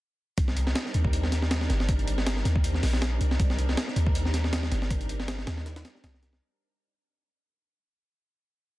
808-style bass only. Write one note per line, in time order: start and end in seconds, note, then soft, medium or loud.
0.38 0.74 C2 loud
0.94 1.68 D#2 loud
1.70 2.44 G1 medium
2.45 2.82 D#2 loud
2.83 3.19 A#1 loud
3.21 3.38 C2 medium
3.40 3.76 C2 loud
3.96 4.70 D#2 loud
4.72 5.46 G1 medium
5.47 5.83 D#2 loud
6.04 6.40 C2 medium